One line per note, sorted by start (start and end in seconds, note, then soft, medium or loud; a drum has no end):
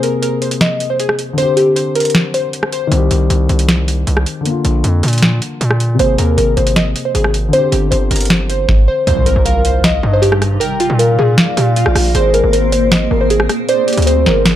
0.00 1.32 C3 medium
0.00 1.35 A#3 medium
0.00 1.37 G#4 medium
0.00 0.19 A#4 medium
0.00 closed hi-hat medium
0.22 0.38 A#4 medium
0.22 closed hi-hat medium
0.42 0.58 C5 medium
0.42 closed hi-hat medium
0.51 closed hi-hat medium
0.61 0.88 D#5 medium
0.61 snare loud
0.61 closed hi-hat medium
0.80 closed hi-hat medium
0.90 0.98 C5 medium
1.00 1.16 G#4 medium
1.00 closed hi-hat medium
1.09 cross-stick medium
1.19 closed hi-hat medium
1.33 2.86 D3 medium
1.38 2.89 C4 medium
1.38 1.54 C5 loud
1.38 closed hi-hat medium
1.43 2.91 G4 medium
1.57 1.73 G4 medium
1.57 closed hi-hat medium
1.76 1.92 C5 medium
1.76 closed hi-hat medium
1.95 2.11 A#4 medium
1.95 closed hi-hat medium
1.95 open hi-hat medium
2.00 closed hi-hat medium
2.05 closed hi-hat medium
2.10 closed hi-hat medium
2.15 snare loud
2.15 closed hi-hat medium
2.34 2.70 C5 medium
2.34 closed hi-hat medium
2.53 closed hi-hat medium
2.63 cross-stick medium
2.72 2.89 C5 medium
2.72 closed hi-hat medium
2.87 4.40 D#3 medium
2.92 3.10 C2 loud
2.92 4.43 C4 medium
2.92 closed hi-hat medium
2.96 4.45 G4 medium
3.11 3.29 C2 loud
3.11 closed hi-hat medium
3.30 3.49 C2 loud
3.30 closed hi-hat medium
3.49 4.05 C2 loud
3.49 closed hi-hat medium
3.59 closed hi-hat medium
3.69 snare loud
3.69 closed hi-hat medium
3.88 closed hi-hat medium
4.07 4.26 C2 loud
4.07 closed hi-hat medium
4.17 cross-stick medium
4.26 closed hi-hat medium
4.41 5.94 D3 medium
4.45 5.96 A#3 medium
4.45 closed hi-hat medium
4.50 5.99 F4 medium
4.65 4.83 A#1 loud
4.65 closed hi-hat medium
4.84 5.03 F2 loud
4.84 closed hi-hat medium
5.03 5.40 A#2 loud
5.03 closed hi-hat medium
5.08 closed hi-hat medium
5.13 closed hi-hat medium
5.18 closed hi-hat medium
5.22 snare loud
5.42 closed hi-hat medium
5.61 5.98 A#2 loud
5.61 closed hi-hat medium
5.71 cross-stick medium
5.80 closed hi-hat medium
5.95 7.48 C3 medium
5.99 6.18 G#1 loud
5.99 7.50 A#3 medium
5.99 6.16 C5 loud
5.99 closed hi-hat medium
6.04 7.53 G#4 medium
6.18 6.37 D#2 loud
6.18 6.34 A#4 medium
6.18 closed hi-hat medium
6.37 6.56 G#1 loud
6.37 6.54 A#4 medium
6.37 closed hi-hat medium
6.57 6.94 G#1 loud
6.57 6.73 C5 medium
6.57 closed hi-hat medium
6.67 closed hi-hat medium
6.76 7.03 D#5 medium
6.76 snare loud
6.76 closed hi-hat medium
6.96 closed hi-hat medium
7.05 7.13 C5 medium
7.15 7.52 G#1 loud
7.15 7.31 G#4 medium
7.15 closed hi-hat medium
7.24 cross-stick medium
7.34 closed hi-hat medium
7.48 9.02 D3 medium
7.53 9.04 C4 medium
7.53 7.69 C5 loud
7.53 closed hi-hat medium
7.58 9.06 G4 medium
7.72 7.91 G1 loud
7.72 7.88 G4 medium
7.72 closed hi-hat medium
7.91 8.10 G1 loud
7.91 8.07 C5 medium
7.91 closed hi-hat medium
8.11 8.66 G1 loud
8.11 8.27 A#4 medium
8.11 closed hi-hat medium
8.11 open hi-hat medium
8.16 closed hi-hat medium
8.21 closed hi-hat medium
8.25 closed hi-hat medium
8.30 snare loud
8.30 closed hi-hat medium
8.50 8.86 C5 medium
8.50 closed hi-hat medium
8.69 kick loud
8.69 snare medium
8.88 9.04 C5 medium
9.07 9.35 C2 loud
9.07 10.59 C3 medium
9.07 10.59 G3 medium
9.07 10.59 D#4 loud
9.07 9.23 C5 loud
9.07 9.43 C5 loud
9.07 closed hi-hat medium
9.07 impact medium
9.26 9.42 A#4 medium
9.26 closed hi-hat medium
9.36 10.01 C2 loud
9.45 9.61 A#4 medium
9.45 10.00 F5 loud
9.45 closed hi-hat loud
9.65 9.81 C5 medium
9.65 closed hi-hat medium
9.84 10.11 D#5 loud
9.84 snare loud
9.84 closed hi-hat loud
10.03 10.59 G2 loud
10.03 10.22 D#5 medium
10.13 10.21 C5 medium
10.22 10.38 G4 medium
10.22 closed hi-hat medium
10.32 cross-stick medium
10.42 cross-stick medium
10.42 closed hi-hat medium
10.60 13.66 A#3 medium
10.60 12.13 F4 medium
10.60 10.76 A#4 loud
10.60 12.13 D5 loud
10.60 10.97 G5 loud
10.60 closed hi-hat medium
10.80 10.96 F4 medium
10.80 closed hi-hat medium
10.90 11.17 A#2 loud
10.99 11.15 A#4 medium
10.99 12.11 F5 medium
10.99 closed hi-hat loud
11.19 11.37 A#2 loud
11.19 11.35 G#4 medium
11.38 snare loud
11.38 closed hi-hat medium
11.57 11.85 A#2 loud
11.57 11.73 G4 medium
11.57 closed hi-hat medium
11.76 12.13 F4 medium
11.76 closed hi-hat medium
11.86 11.95 A#1 loud
11.86 cross-stick medium
11.95 12.14 A#1 loud
11.95 cross-stick medium
11.95 open hi-hat medium
12.15 12.42 G#1 loud
12.15 13.67 C4 medium
12.15 12.51 G#4 loud
12.15 13.67 G#4 medium
12.15 12.31 C5 loud
12.15 closed hi-hat medium
12.34 12.50 A#4 medium
12.34 closed hi-hat medium
12.44 13.08 G#1 loud
12.53 12.69 A#4 medium
12.53 13.07 C5 medium
12.53 closed hi-hat loud
12.72 12.88 C5 medium
12.72 closed hi-hat medium
12.92 13.19 D#5 medium
12.92 snare loud
12.92 closed hi-hat loud
13.11 13.48 G#1 loud
13.11 13.29 A#4 medium
13.21 13.29 C5 medium
13.30 13.46 G#4 medium
13.30 closed hi-hat medium
13.40 cross-stick medium
13.49 cross-stick medium
13.49 closed hi-hat medium
13.69 14.56 G3 medium
13.69 14.56 D4 medium
13.69 14.56 C5 medium
13.69 13.85 C5 loud
13.69 14.05 D5 loud
13.69 closed hi-hat medium
13.87 14.04 G4 medium
13.87 closed hi-hat medium
13.93 closed hi-hat medium
13.97 14.25 D2 loud
13.97 closed hi-hat medium
14.02 closed hi-hat medium
14.06 14.23 C5 medium
14.06 14.43 C5 medium
14.06 closed hi-hat loud
14.26 14.56 G1 loud
14.26 14.42 A#4 medium
14.26 snare medium
14.45 snare loud
14.45 closed hi-hat medium